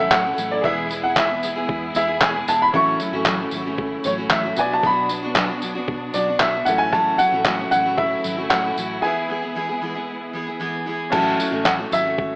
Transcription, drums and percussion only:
0.11 kick loud
0.11 clap loud
0.38 tambourine medium
0.64 kick loud
0.91 tambourine medium
1.16 kick loud
1.16 clap loud
1.43 tambourine medium
1.69 kick loud
1.95 tambourine medium
2.21 kick loud
2.21 clap loud
2.48 tambourine medium
2.74 kick loud
3.00 tambourine medium
3.26 kick loud
3.26 clap loud
3.51 tambourine medium
3.78 kick loud
4.04 tambourine medium
4.30 kick loud
4.30 clap loud
4.56 tambourine medium
4.83 kick loud
5.09 tambourine medium
5.35 kick loud
5.35 clap loud
5.62 tambourine medium
5.88 kick loud
6.14 tambourine medium
6.40 kick loud
6.40 clap loud
6.66 tambourine medium
6.93 kick loud
7.19 tambourine medium
7.45 kick loud
7.45 clap loud
7.72 tambourine medium
7.98 kick loud
8.24 tambourine medium
8.50 kick loud
8.50 clap loud
8.78 tambourine medium
11.12 kick loud
11.12 crash loud
11.40 tambourine medium
11.65 kick loud
11.65 clap loud
11.92 tambourine medium
12.18 kick loud

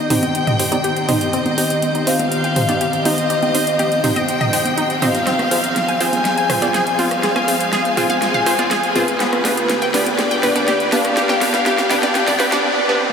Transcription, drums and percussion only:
0.10 mid tom medium
0.10 open hi-hat loud
0.23 closed hi-hat medium
0.23 high conga medium
0.35 closed hi-hat medium
0.47 closed hi-hat soft
0.47 mid tom medium
0.59 open hi-hat loud
0.72 closed hi-hat medium
0.72 high conga medium
0.84 closed hi-hat medium
0.96 closed hi-hat soft
1.09 mid tom medium
1.09 open hi-hat loud
1.09 high conga medium
1.21 closed hi-hat medium
1.33 closed hi-hat soft
1.46 closed hi-hat soft
1.46 high conga medium
1.58 open hi-hat loud
1.70 closed hi-hat medium
1.82 closed hi-hat medium
1.82 high conga medium
1.95 closed hi-hat soft
2.07 open hi-hat loud
2.19 closed hi-hat soft
2.19 high conga medium
2.32 closed hi-hat medium
2.44 closed hi-hat soft
2.56 mid tom medium
2.56 open hi-hat loud
2.69 closed hi-hat medium
2.69 high conga medium
2.81 closed hi-hat soft
2.93 closed hi-hat soft
3.05 open hi-hat loud
3.05 high conga medium
3.18 closed hi-hat soft
3.30 closed hi-hat soft
3.43 closed hi-hat soft
3.43 high conga medium
3.55 open hi-hat loud
3.67 closed hi-hat soft
3.79 closed hi-hat medium
3.79 high conga medium
3.92 closed hi-hat soft
4.04 mid tom medium
4.04 open hi-hat loud
4.16 closed hi-hat soft
4.16 high conga medium
4.28 closed hi-hat soft
4.41 closed hi-hat soft
4.41 mid tom loud
4.53 open hi-hat loud
4.65 closed hi-hat medium
4.65 high conga medium
4.78 closed hi-hat soft
4.90 closed hi-hat soft
5.02 mid tom medium
5.02 open hi-hat loud
5.02 high conga medium
5.15 closed hi-hat soft
5.27 snare soft
5.27 closed hi-hat soft
5.39 cross-stick medium
5.39 closed hi-hat soft
5.39 high conga medium
5.51 open hi-hat loud
5.64 closed hi-hat soft
5.76 snare medium
5.76 closed hi-hat medium
5.76 high conga medium
5.88 closed hi-hat soft
6.01 open hi-hat loud
6.13 closed hi-hat soft
6.13 high conga medium
6.25 snare medium
6.25 closed hi-hat soft
6.38 closed hi-hat soft
6.50 cross-stick medium
6.50 mid tom medium
6.50 open hi-hat loud
6.62 closed hi-hat medium
6.62 high conga medium
6.74 snare medium
6.74 closed hi-hat soft
6.87 closed hi-hat soft
6.99 open hi-hat loud
6.99 high conga medium
7.11 cross-stick medium
7.11 closed hi-hat medium
7.23 snare medium
7.23 closed hi-hat medium
7.36 cross-stick medium
7.36 closed hi-hat soft
7.36 high conga medium
7.48 open hi-hat loud
7.61 closed hi-hat medium
7.73 snare medium
7.73 closed hi-hat medium
7.73 high conga medium
7.85 closed hi-hat soft
7.97 mid tom medium
7.97 open hi-hat loud
8.10 closed hi-hat medium
8.10 high conga medium
8.22 snare medium
8.22 closed hi-hat medium
8.34 closed hi-hat soft
8.34 mid tom medium
8.46 cross-stick medium
8.46 open hi-hat loud
8.59 closed hi-hat medium
8.59 high conga medium
8.71 snare medium
8.71 closed hi-hat medium
8.83 closed hi-hat soft
8.96 mid tom medium
8.96 open hi-hat loud
8.96 high conga medium
9.08 closed hi-hat medium
9.20 snare medium
9.20 closed hi-hat medium
9.33 cross-stick medium
9.33 closed hi-hat soft
9.33 high conga medium
9.45 snare medium
9.45 open hi-hat loud
9.57 closed hi-hat medium
9.70 snare medium
9.70 closed hi-hat medium
9.70 high conga medium
9.82 closed hi-hat soft
9.94 snare medium
9.94 open hi-hat loud
10.06 closed hi-hat medium
10.06 high conga medium
10.19 snare medium
10.19 closed hi-hat medium
10.31 closed hi-hat soft
10.43 cross-stick medium
10.43 snare medium
10.43 mid tom medium
10.43 open hi-hat loud
10.56 closed hi-hat medium
10.56 high conga medium
10.68 snare medium
10.68 closed hi-hat medium
10.80 closed hi-hat soft
10.92 snare medium
10.92 open hi-hat loud
10.92 high conga medium
11.05 cross-stick medium
11.05 closed hi-hat medium
11.17 snare medium
11.17 closed hi-hat medium
11.29 cross-stick medium
11.29 snare medium
11.29 closed hi-hat soft
11.29 high conga loud
11.41 snare medium
11.41 open hi-hat loud
11.54 snare medium
11.54 closed hi-hat medium
11.66 snare loud
11.66 closed hi-hat medium
11.66 high conga medium
11.78 snare medium
11.78 closed hi-hat soft
11.91 snare loud
11.91 mid tom medium
11.91 open hi-hat loud
12.03 snare medium
12.03 closed hi-hat medium
12.03 high conga loud
12.15 snare loud
12.15 closed hi-hat medium
12.28 snare medium
12.28 mid tom medium
12.28 open hi-hat medium
12.40 cross-stick medium
12.40 snare loud
12.40 open hi-hat loud
12.52 snare medium
12.52 closed hi-hat medium
12.52 high conga medium

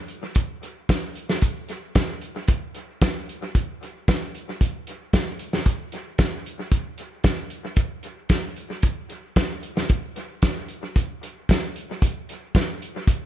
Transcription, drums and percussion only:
0.08 closed hi-hat medium
0.35 kick loud
0.35 closed hi-hat medium
0.63 closed hi-hat medium
0.89 kick medium
0.89 snare loud
0.89 closed hi-hat medium
1.16 closed hi-hat medium
1.29 snare medium
1.41 kick loud
1.41 closed hi-hat medium
1.69 closed hi-hat medium
1.95 kick loud
1.95 snare loud
1.95 closed hi-hat medium
2.21 closed hi-hat medium
2.48 kick loud
2.48 closed hi-hat medium
2.75 closed hi-hat medium
3.02 kick loud
3.02 snare loud
3.02 closed hi-hat medium
3.29 closed hi-hat medium
3.55 kick loud
3.55 closed hi-hat medium
3.83 closed hi-hat medium
4.08 kick loud
4.08 snare loud
4.08 closed hi-hat medium
4.35 closed hi-hat medium
4.61 kick loud
4.61 closed hi-hat medium
4.87 closed hi-hat medium
5.13 kick loud
5.13 snare loud
5.13 closed hi-hat medium
5.39 closed hi-hat medium
5.53 snare medium
5.66 kick loud
5.66 closed hi-hat medium
5.92 closed hi-hat medium
6.18 kick loud
6.18 snare loud
6.18 closed hi-hat medium
6.46 closed hi-hat medium
6.72 kick loud
6.72 closed hi-hat medium
6.98 closed hi-hat medium
7.24 kick loud
7.24 snare loud
7.24 closed hi-hat medium
7.50 closed hi-hat medium
7.76 kick loud
7.76 closed hi-hat medium
8.03 closed hi-hat medium
8.29 kick loud
8.29 snare loud
8.29 closed hi-hat medium
8.56 closed hi-hat medium
8.82 kick loud
8.82 closed hi-hat medium
9.10 closed hi-hat medium
9.36 kick loud
9.36 snare loud
9.36 closed hi-hat medium
9.63 closed hi-hat medium
9.77 snare medium
9.89 kick loud
9.89 closed hi-hat medium
10.16 closed hi-hat medium
10.42 kick loud
10.42 snare loud
10.42 closed hi-hat medium
10.68 closed hi-hat medium
10.96 kick loud
10.96 closed hi-hat medium
11.23 closed hi-hat medium
11.49 kick loud
11.49 snare loud
11.49 closed hi-hat medium
11.76 closed hi-hat medium
12.02 kick loud
12.02 closed hi-hat medium
12.29 closed hi-hat medium
12.55 kick loud
12.55 snare loud
12.55 closed hi-hat medium
12.82 closed hi-hat medium
13.07 kick loud
13.07 closed hi-hat medium

